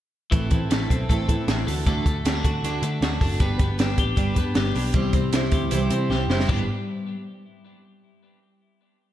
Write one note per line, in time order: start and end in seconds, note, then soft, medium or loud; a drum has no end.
0.31 0.48 A1 loud
0.31 0.50 E3 medium
0.31 0.51 A3 medium
0.31 0.52 C4 medium
0.31 0.51 E4 medium
0.31 0.49 A4 loud
0.31 kick loud
0.31 closed hi-hat medium
0.50 0.67 A1 medium
0.50 1.27 E3 medium
0.50 0.70 C4 soft
0.50 0.71 E4 soft
0.50 0.70 A4 soft
0.50 kick medium
0.50 closed hi-hat medium
0.70 0.86 A1 medium
0.70 0.90 A3 medium
0.70 0.90 C4 medium
0.70 0.91 E4 medium
0.70 0.89 A4 medium
0.70 snare loud
0.70 closed hi-hat medium
0.90 1.06 B1 medium
0.90 1.09 C4 soft
0.90 1.10 E4 medium
0.90 1.09 A4 medium
0.90 kick medium
0.90 closed hi-hat medium
1.09 1.25 A1 loud
1.09 1.28 A3 medium
1.09 1.29 C4 medium
1.09 1.29 E4 medium
1.09 1.27 A4 medium
1.09 kick medium
1.09 closed hi-hat medium
1.28 1.44 A2 medium
1.28 1.71 E3 medium
1.28 1.47 C4 soft
1.28 1.48 E4 soft
1.28 1.48 A4 medium
1.28 kick medium
1.28 closed hi-hat medium
1.48 1.63 A1 medium
1.48 1.67 A3 medium
1.48 1.67 C4 medium
1.48 1.68 E4 medium
1.48 1.65 A4 medium
1.48 snare loud
1.48 closed hi-hat medium
1.67 1.98 D2 medium
1.67 1.86 A3 medium
1.67 1.87 D4 soft
1.67 1.87 F#4 medium
1.67 1.86 A4 medium
1.67 open hi-hat medium
1.86 2.05 D3 medium
1.86 2.06 A3 medium
1.86 2.06 D4 medium
1.86 2.06 F#4 medium
1.86 2.05 A4 loud
1.86 kick loud
1.86 closed hi-hat medium
2.06 2.21 D2 medium
2.06 2.82 A3 medium
2.06 2.25 D4 soft
2.06 2.26 F#4 soft
2.06 2.25 A4 medium
2.06 kick loud
2.06 closed hi-hat medium
2.25 2.40 D2 medium
2.25 2.44 A3 medium
2.25 2.35 C4 medium
2.25 2.44 D4 medium
2.25 2.45 F#4 medium
2.25 2.43 A4 medium
2.25 snare loud
2.25 closed hi-hat medium
2.35 2.63 D4 medium
2.44 2.60 D2 medium
2.44 2.64 D4 soft
2.44 2.64 F#4 medium
2.44 2.63 A4 medium
2.44 kick medium
2.44 closed hi-hat medium
2.63 2.79 D2 medium
2.63 2.83 D3 medium
2.63 2.83 A3 medium
2.63 2.83 D4 medium
2.63 2.83 F#4 medium
2.63 2.81 A4 medium
2.63 closed hi-hat medium
2.82 2.98 D3 medium
2.82 3.40 A3 medium
2.82 3.02 D4 soft
2.82 3.02 F#4 medium
2.82 3.01 A4 medium
2.82 closed hi-hat medium
3.01 3.17 D2 loud
3.01 3.21 A3 medium
3.01 3.22 D4 medium
3.01 3.22 F#4 medium
3.01 snare loud
3.01 closed hi-hat medium
3.05 3.20 A4 medium
3.21 3.37 F#1 medium
3.21 3.40 D4 soft
3.21 3.41 F#4 medium
3.21 3.40 A4 medium
3.21 kick medium
3.21 open hi-hat medium
3.40 3.56 G1 loud
3.40 3.59 G3 medium
3.40 3.60 B3 medium
3.40 3.60 D4 medium
3.40 3.59 G4 medium
3.40 3.57 B4 medium
3.40 kick loud
3.40 closed hi-hat medium
3.58 3.75 G1 medium
3.58 4.37 B3 medium
3.58 3.78 D4 soft
3.58 3.79 G4 soft
3.58 3.78 B4 medium
3.58 kick loud
3.58 closed hi-hat medium
3.78 3.94 G1 medium
3.78 3.97 G3 medium
3.78 3.98 D4 medium
3.78 3.97 G4 medium
3.78 3.95 B4 medium
3.78 snare loud
3.78 closed hi-hat medium
3.96 4.14 A1 medium
3.96 4.16 D4 soft
3.96 4.16 G4 soft
3.96 4.16 B4 medium
3.96 kick medium
3.96 closed hi-hat medium
4.16 4.38 G1 loud
4.16 4.36 G3 medium
4.16 4.36 D4 medium
4.16 4.35 G4 medium
4.16 4.33 B4 medium
4.16 kick loud
4.16 closed hi-hat medium
4.34 4.52 G2 medium
4.34 4.99 B3 medium
4.34 4.54 D4 medium
4.34 4.56 G4 medium
4.34 4.55 B4 medium
4.34 kick medium
4.34 closed hi-hat medium
4.54 4.72 G1 loud
4.54 4.74 G3 medium
4.54 4.75 D4 medium
4.54 4.75 G4 medium
4.54 4.74 B4 medium
4.54 snare loud
4.54 closed hi-hat medium
4.75 4.91 B1 loud
4.75 4.95 D4 medium
4.75 4.95 G4 medium
4.75 4.94 B4 medium
4.75 open hi-hat medium
4.94 5.10 C2 loud
4.94 5.13 C3 medium
4.94 5.13 E3 medium
4.94 5.14 G3 medium
4.94 5.14 C4 loud
4.94 5.13 E4 medium
4.94 5.12 C5 loud
4.94 kick loud
4.94 closed hi-hat medium
5.13 5.29 C2 medium
5.13 5.31 G3 soft
5.13 5.32 C4 medium
5.13 5.33 E4 soft
5.13 5.33 C5 medium
5.13 kick medium
5.13 closed hi-hat medium
5.33 5.49 C2 medium
5.33 5.52 G3 medium
5.33 5.53 C4 medium
5.33 5.52 E4 medium
5.33 5.50 C5 medium
5.33 snare loud
5.33 closed hi-hat loud
5.51 5.68 D2 medium
5.51 5.71 G3 soft
5.51 5.72 C4 soft
5.51 5.72 E4 medium
5.51 6.10 G4 medium
5.51 5.71 C5 medium
5.51 kick medium
5.51 closed hi-hat medium
5.71 5.88 C2 loud
5.71 5.91 C3 medium
5.71 5.91 E3 medium
5.71 5.91 G3 medium
5.71 5.92 C4 medium
5.71 5.91 E4 medium
5.71 5.89 C5 loud
5.71 closed hi-hat medium
5.90 6.11 C3 medium
5.90 6.09 G3 soft
5.90 6.10 C4 medium
5.90 6.11 E4 medium
5.90 6.10 C5 medium
5.90 closed hi-hat medium
6.10 6.26 C2 loud
6.10 6.29 G3 medium
6.10 6.30 C4 medium
6.10 6.29 E4 medium
6.10 6.50 G4 medium
6.10 6.29 C5 medium
6.10 snare medium
6.28 6.45 F#1 medium
6.28 6.50 C4 medium
6.28 6.50 E4 medium
6.28 6.49 C5 medium
6.28 snare medium
6.33 6.48 G3 soft
6.40 snare medium
6.48 6.67 G1 medium
6.48 6.65 G3 medium
6.48 6.64 B3 medium
6.48 6.65 D4 medium
6.48 6.66 G4 medium
6.48 6.66 B4 medium
6.48 kick loud
6.48 floor tom loud
6.48 crash medium